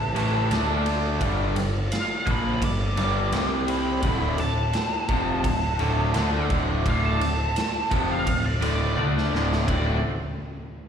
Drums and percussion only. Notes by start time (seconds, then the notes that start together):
0.16 ride
0.51 snare, ride
0.86 ride
1.21 kick, ride
1.56 ride
1.92 snare, ride
2.27 kick, ride
2.62 kick, ride
2.97 ride
3.32 snare, ride
3.68 ride
4.03 kick, ride
4.38 ride
4.73 snare, ride
5.08 kick, ride
5.44 kick, ride
5.79 ride
6.14 snare, ride
6.50 kick, ride
6.86 kick, ride
7.21 ride
7.56 snare, ride
7.91 kick, ride
8.27 kick, ride
8.62 ride
8.98 high tom
9.18 snare
9.35 snare
9.52 snare
9.68 kick, floor tom, ride bell